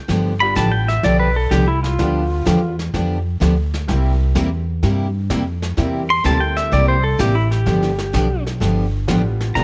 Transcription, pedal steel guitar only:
0.40 B5
0.56 A5
0.72 G5
0.88 E5
1.04 D5
1.20 B4
1.36 A4
1.51 G4
1.68 E4
1.83 F4
6.10 C6
6.26 A5
6.40 G5
6.57 E5
6.73 D5
6.88 C5
7.04 A4
7.20 G4
7.35 E4
7.51 G4
9.55 A#5

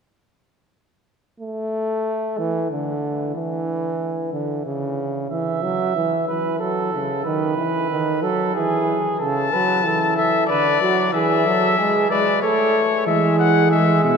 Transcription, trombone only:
1.40 A3
2.38 E3
2.70 D3
3.36 E3
4.34 D3
4.67 C#3
5.31 E3
5.64 F#3
5.96 E3
6.29 E3
6.61 F#3
6.94 C#3
7.26 D#3
7.58 E3
7.91 D#3
8.23 F#3
8.56 E3
9.21 C#3
9.53 F#3
9.85 E3
10.49 D3
10.81 F#3
11.13 E3
11.46 F#3
11.79 G#3
12.10 G#3
12.43 A3
13.08 G#3
13.73 G#3

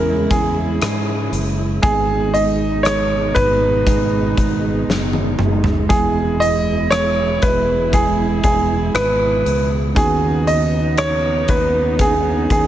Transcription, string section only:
Already playing: C#3 G#3 E4
1.84 B2 G#3 D#4
5.90 B2 E4
9.96 C#3 B3 D#4

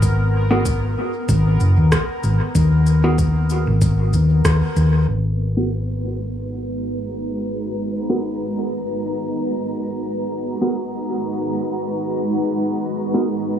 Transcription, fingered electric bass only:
Already playing: G#1
1.29 G#1
1.60 F#1
1.77 D#2
2.23 G#1
2.55 D#2
3.67 G#1
4.13 D#2
4.45 D#2
4.76 D#2
5.08 G#1

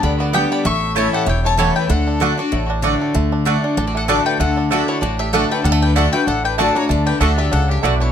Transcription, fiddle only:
0.02 D5
0.18 F#4
0.33 B4
0.50 D5
0.64 E5
0.97 C#5
1.13 A4
1.27 C#5
1.44 C#5
1.59 A4
1.77 B4
1.89 A4
2.38 F#4
3.78 D4
3.88 F#4
3.97 A4
4.07 D5
4.25 B4
4.39 A4
4.71 A4
4.88 E4
5.02 F#4
5.19 G4
5.32 A4
5.50 B4
5.63 A4
5.83 B4
5.96 A4
6.13 B4
6.27 A4
6.45 B4
6.60 D5
6.76 C#5
6.89 D5
7.06 B4
7.19 A4
7.37 G4
7.52 A4
7.70 G4
7.83 F#4
7.99 E4

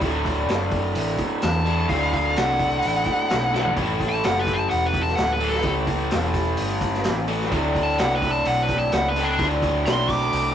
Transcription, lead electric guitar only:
1.43 A5
1.89 F5
2.14 F5
2.37 F#5
4.09 A5
4.25 F#5
4.39 B4
4.54 A5
4.70 F#5
4.86 B4
5.01 A5
5.15 F#5
5.33 B4
5.49 A4
7.83 A5
7.99 F#5
8.15 B4
8.31 A5
8.47 F#5
8.63 B4
8.78 A5
8.93 F#5
9.08 B4
9.23 D4
9.86 C6
10.10 D6

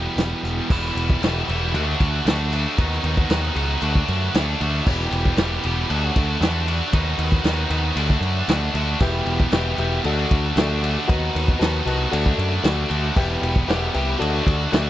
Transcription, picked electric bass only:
0.16 E1
0.43 E1
0.70 E1
0.95 E1
1.22 E1
1.49 E1
1.74 D2
2.00 D2
2.25 D2
2.78 D#2
3.04 D#2
3.30 D#2
3.55 C#2
3.82 D2
4.09 F#2
4.34 D2
4.61 D2
4.86 E1
5.11 E1
5.37 E1
5.65 E1
5.90 D2
6.16 D2
6.41 E2
6.93 D#2
7.18 D#2
7.44 D#2
7.70 D#2
7.96 D2
8.20 F#2
8.48 D2
8.74 D2
9.00 E1
9.25 E1
9.52 E1
9.78 E1
10.04 D2
10.31 D2
10.56 D2
11.09 D#2
11.35 D#2
11.60 D#2
11.86 C2
12.13 D2
12.38 F#2
12.64 D2
12.90 D2
13.16 E1
13.42 E1
13.68 E1
13.95 C2
14.21 D2
14.46 D2
14.73 D2

